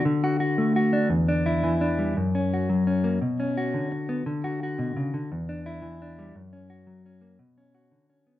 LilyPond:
\new Staff \with { instrumentName = "Clean electric guitar" } { \time 12/8 \key b \minor \tempo 4. = 114 << { r8 fis'8 fis'4 fis'8 d'8 r8 d'8 e'4 d'8 g8 | r8 cis'8 fis'4 cis'8 ais8 r8 cis'8 fis'4. b8 | r8 fis'8 fis'2 r8 d'8 e'4 d'8 g8 | r8 cis'8 fis'4 cis'8 ais8 r8 cis'8 fis'4 cis'8 b8 | } \\ { d4. a4. e,4. e4. | fis,4. fis4. b,4. d4. | d4. b,8 cis8 d8 e,4. e4. | fis,4. fis4. b,4. d4. | } >> }